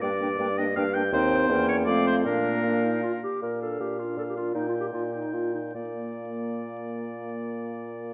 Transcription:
<<
  \new Staff \with { instrumentName = "Flute" } { \time 3/4 \key bes \major \tempo 4 = 156 g''8 g''8 g''8 g''8 g''8 g''8 | g''4 g''4 f''4 | f''2~ f''8 r8 | r2. |
r2. | r2. | r2. | }
  \new Staff \with { instrumentName = "Oboe" } { \time 3/4 \key bes \major d''4. ees''8 f''8 g''8 | c''4. cis''8 d''8 c''8 | bes'2~ bes'8 r8 | r8 f''4 f''4 f''8 |
g''8 g''4 g''4 g''8 | d''2.~ | d''2. | }
  \new Staff \with { instrumentName = "Clarinet" } { \time 3/4 \key bes \major d'8 d'8 d'8 d'8 d'8 d'8 | ees'4 cis'4 c'4 | d'4 d'8 ees'8 f'8 g'8 | bes'8 a'8 g'8 f'8 a'16 g'16 f'8 |
\tuplet 3/2 { ees'8 f'8 g'8 } f'8 ees'8 f'8 ees'8 | bes2.~ | bes2. | }
  \new Staff \with { instrumentName = "French horn" } { \time 3/4 \key bes \major bes8 bes8 bes8 bes8 bes8 bes8 | c'4 bes4 a4 | bes2~ bes8 r8 | r8 d'4 d'4 d'8 |
ees'8 ees'4 ees'4 ees'8 | bes2.~ | bes2. | }
  \new Staff \with { instrumentName = "Bassoon" } { \clef bass \time 3/4 \key bes \major g,4 g,4 g,4 | ees,4 e,4 f,4 | bes,2~ bes,8 r8 | bes,4 bes,4 bes,4 |
bes,4 bes,4 bes,4 | bes,2.~ | bes,2. | }
>>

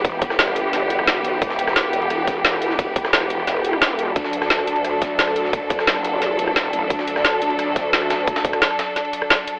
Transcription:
<<
  \new Staff \with { instrumentName = "String section" } { \time 4/4 \key d \mixolydian \tempo 4 = 175 <e b g'>1~ | <e b g'>1~ | <e b g'>1 | <fis d' a'>1~ |
<fis d' a'>1~ | <fis d' a'>1~ | <fis d' a'>1 | }
  \new Staff \with { instrumentName = "Wobble bass" } { \clef bass \time 4/4 \key d \mixolydian e,,4 g,,4. fis,,4 b,,8 | e,,4. e,,2~ e,,8 | e,,4 e,,2. | d,4. d,2~ d,8 |
d,4 fis,,4. e,,4 a,,8 | d,4. d,2~ d,8 | d,4 r2. | }
  \new DrumStaff \with { instrumentName = "Drums" } \drummode { \time 4/4 <hh bd cymr>8 <hh bd cymr>16 <ss sn>16 <hh cymr sn>16 ss16 <hh cymr>8 <hh cymr sn>8 <hh cymr>16 ss16 <hh cymr sn>8 <hh cymr>8 | <hh bd cymr>16 sn16 <hh cymr>16 <ss sn>16 <hh cymr sn>16 ss16 <hh cymr>16 cymr16 <hh cymr ss>8 <hh bd cymr sn>8 <hh cymr sn>16 ss16 <hh cymr>16 sn16 | <hh bd cymr>8 <hh bd cymr>16 <ss sn>16 <hh cymr sn>16 ss16 <hh cymr>8 <hh cymr sn>8 <hh cymr>16 ss16 <hh cymr sn>8 <hh cymr>8 | <hh bd cymr>16 sn16 <hh cymr>16 <ss sn>16 <hh cymr sn>16 ss16 <hh cymr>16 cymr16 <hh cymr ss>8 <hh bd cymr sn>8 <hh cymr sn>16 ss16 <hh cymr>16 sn16 |
<hh bd cymr>8 <hh bd cymr>16 <ss sn>16 <hh cymr sn>16 ss16 <hh cymr>8 <hh cymr sn>8 <hh cymr>16 ss16 <hh cymr sn>8 <hh cymr>8 | <hh bd cymr>16 sn16 <hh cymr>16 <ss sn>16 <hh cymr sn>16 ss16 <hh cymr>16 cymr16 <hh cymr ss>8 <hh bd cymr sn>8 <hh cymr sn>16 ss16 <hh cymr sn>8 | <hh bd cymr>16 <cymr sn>16 <hh bd>16 <cymr ss>16 <hh cymr sn>16 ss16 <hh cymr sn>8 <hh cymr sn>16 cymr16 <hh cymr>16 ss16 <hh cymr sn>8 <hh cymr>8 | }
>>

